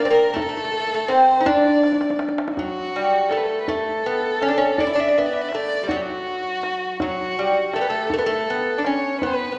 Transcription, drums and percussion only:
0.36 tombak dum
0.73 tombak ka
1.09 tombak tek
1.46 tombak dum
1.65 tombak ka
1.83 tombak tek
1.92 tombak ka
2.01 tombak tek
2.10 tombak ka
2.19 tombak tek
2.29 tombak ka
2.38 tombak tek
2.48 tombak ka
2.57 tombak dum
3.31 tombak tek
3.68 tombak dum
4.41 tombak tek
4.78 tombak dum
5.52 tombak tek
5.89 tombak dum
6.63 tombak tek
7.00 tombak dum
7.73 tombak tek
8.10 tombak dum
8.84 tombak tek
9.22 tombak dum

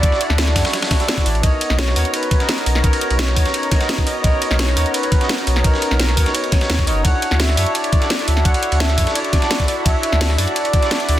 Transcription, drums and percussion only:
0.03 kick, closed hi-hat, ride
0.12 snare
0.21 closed hi-hat, ride
0.30 snare
0.38 snare, closed hi-hat, ride
0.47 snare, ride
0.56 kick, snare, open hi-hat
0.65 snare, closed hi-hat, open hi-hat
0.73 snare, closed hi-hat, open hi-hat
0.82 snare, closed hi-hat, open hi-hat
0.91 kick, snare, closed hi-hat, open hi-hat
1.00 snare, closed hi-hat
1.08 snare, closed hi-hat, ride
1.17 kick, snare, closed hi-hat
1.26 open hi-hat, ride
1.35 ride
1.43 kick, closed hi-hat, ride
1.61 closed hi-hat, ride
1.70 snare
1.79 snare, closed hi-hat, open hi-hat
1.88 snare
1.96 open hi-hat, ride
2.05 closed hi-hat
2.14 closed hi-hat, ride
2.23 closed hi-hat, ride
2.31 kick, closed hi-hat, ride
2.40 snare, closed hi-hat
2.49 snare, closed hi-hat, ride
2.58 closed hi-hat
2.66 open hi-hat, ride
2.75 snare
2.84 kick, closed hi-hat, ride
2.93 ride
3.01 closed hi-hat
3.10 ride
3.19 snare, closed hi-hat, ride
3.28 snare, ride
3.36 kick, open hi-hat, ride
3.46 snare, closed hi-hat
3.54 closed hi-hat, ride
3.63 closed hi-hat
3.72 kick, snare, closed hi-hat, ride
3.81 snare, closed hi-hat
3.89 snare, closed hi-hat, ride
3.98 kick, snare, closed hi-hat
4.07 open hi-hat, ride
4.24 kick, closed hi-hat, ride
4.42 closed hi-hat, ride
4.51 snare
4.59 snare, closed hi-hat, open hi-hat
4.68 snare
4.77 open hi-hat, ride
4.86 closed hi-hat
4.94 closed hi-hat, ride
5.03 closed hi-hat, ride
5.12 kick, closed hi-hat, ride
5.21 snare, closed hi-hat
5.29 snare, closed hi-hat, ride
5.38 closed hi-hat
5.47 open hi-hat, ride
5.56 snare
5.64 kick, closed hi-hat, ride
5.74 snare
5.82 closed hi-hat, ride
5.91 snare
6.00 snare, closed hi-hat, ride
6.09 snare, ride
6.17 kick, open hi-hat, ride
6.26 snare, closed hi-hat
6.35 closed hi-hat, ride
6.44 closed hi-hat
6.52 kick, snare, closed hi-hat, ride
6.61 snare, closed hi-hat
6.70 snare, closed hi-hat, ride
6.79 kick, snare, closed hi-hat
6.87 open hi-hat, ride
7.05 kick, closed hi-hat, ride
7.22 closed hi-hat, ride
7.31 snare
7.40 snare, closed hi-hat, open hi-hat
7.49 snare
7.57 open hi-hat, ride
7.66 closed hi-hat
7.75 closed hi-hat, ride
7.84 closed hi-hat, ride
7.92 kick, closed hi-hat, ride
8.02 snare, closed hi-hat
8.10 snare, closed hi-hat, ride
8.19 closed hi-hat
8.28 open hi-hat, ride
8.37 snare
8.45 kick, closed hi-hat, ride
8.54 ride
8.63 closed hi-hat
8.72 ride
8.80 snare, closed hi-hat, ride
8.89 snare, ride
8.98 kick, open hi-hat, ride
9.07 snare, closed hi-hat
9.15 closed hi-hat, ride
9.24 closed hi-hat
9.33 kick, snare, closed hi-hat, ride
9.42 snare, closed hi-hat
9.51 snare, closed hi-hat, ride
9.60 kick, snare, closed hi-hat
9.68 open hi-hat, ride
9.86 kick, closed hi-hat, ride
10.03 closed hi-hat, ride
10.12 snare
10.21 snare, closed hi-hat, open hi-hat
10.30 snare
10.38 open hi-hat, ride
10.48 closed hi-hat
10.56 closed hi-hat, ride
10.65 closed hi-hat, ride
10.73 kick, closed hi-hat, ride
10.82 snare, closed hi-hat
10.91 snare, closed hi-hat, ride
11.00 closed hi-hat
11.09 open hi-hat, ride

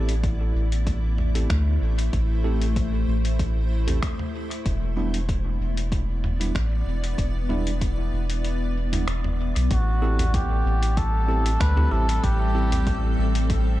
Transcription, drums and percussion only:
0.09 closed hi-hat
0.24 kick, closed hi-hat
0.72 closed hi-hat
0.87 kick, closed hi-hat
1.18 mid tom
1.35 closed hi-hat
1.50 finger snap, kick, closed hi-hat
1.99 closed hi-hat
2.13 kick, closed hi-hat
2.62 closed hi-hat
2.76 kick, closed hi-hat
3.25 closed hi-hat
3.39 kick, closed hi-hat
3.88 closed hi-hat, mid tom
4.03 finger snap, kick, closed hi-hat
4.19 mid tom
4.51 closed hi-hat
4.66 kick, closed hi-hat
5.14 closed hi-hat
5.29 kick, closed hi-hat
5.77 closed hi-hat
5.92 kick, closed hi-hat
6.24 mid tom
6.41 closed hi-hat
6.55 finger snap, kick, closed hi-hat
7.04 closed hi-hat
7.18 kick, closed hi-hat
7.50 mid tom
7.67 closed hi-hat
7.81 kick, closed hi-hat
8.30 closed hi-hat
8.45 closed hi-hat
8.93 closed hi-hat, mid tom
9.08 finger snap, closed hi-hat
9.24 mid tom
9.56 closed hi-hat
9.71 kick, closed hi-hat
10.19 closed hi-hat, mid tom
10.34 kick, closed hi-hat
10.83 closed hi-hat
10.97 kick, closed hi-hat
11.46 closed hi-hat
11.60 finger snap, kick, closed hi-hat
11.77 mid tom
12.09 closed hi-hat
12.24 kick, closed hi-hat
12.72 closed hi-hat, mid tom
12.87 kick, closed hi-hat
13.35 closed hi-hat
13.50 kick, closed hi-hat

